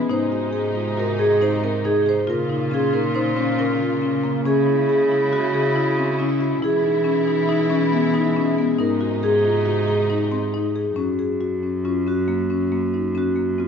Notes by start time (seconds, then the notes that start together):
Already playing: E3 G#3 B4
0.10 G#2 C3 D#4 C5
0.32 F#4
0.53 G#4
0.75 F4
0.97 F#4 A#4
1.18 G#4
1.41 D#4 C5
1.63 C4 A#4
1.85 D#4 G#4
2.06 G#4 C5
2.27 A#2 C#3 A#3 F4 A#4
2.49 D#4
2.71 C#4 G#4
2.93 D#4 A#4
3.15 D#4 C5
3.37 C#4
3.58 C#4 A#4
3.80 F4
4.02 C#4
4.24 A#3
4.45 C#3 G#3 C#4 E4 G#4
4.67 E4
4.89 G#4
5.12 E4
5.33 F#4
5.54 G#4
5.76 E4
5.98 C4
6.18 C#4 E4
6.41 F#4
6.61 B2 E3 G#3 E4 G#4
6.84 D#4
7.04 C#4
7.27 D#4
7.49 D#4
7.70 C#4
7.92 B3
8.14 D#4
8.36 C#4
8.58 B3
8.79 G#2 C3 D#4 A#4
9.01 F#4
9.23 G#4
9.45 F4
9.66 F#4
9.88 G#4
10.10 D#4
10.32 C4
10.54 D#4
10.76 G#4
10.96 F#2 C#4 F#4
11.19 G#4
11.41 F#4
11.63 C#4
11.85 C#4 F4
12.07 C#4 F#4
12.28 A#3
12.50 C#4
12.72 A#3
12.94 D#4
13.15 C#4 F#4
13.36 A#3
13.58 C4 F4